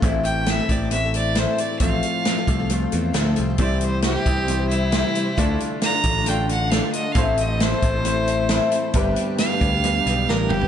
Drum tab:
HH |x-x-x-x-x-x-x-x-|x-x-x-x-x-x-x-x-|x-x-x-x-x-x-x-x-|x-x-x-x-x-x-x-x-|
SD |----o-------o---|----o-------o---|----o-------o---|----o-------o---|
T2 |----------------|----------------|----------------|----------------|
FT |----------------|----------------|----------------|----------------|
BD |o-----o---------|o-----o---------|o-----o---------|o-----o---------|

HH |x-x-x-x-x-x-x-x-|x-x-x-x-x-x-----|
SD |----o-------o---|----o-------o---|
T2 |----------------|--------------o-|
FT |----------------|---------------o|
BD |o-----o---------|o-----o---------|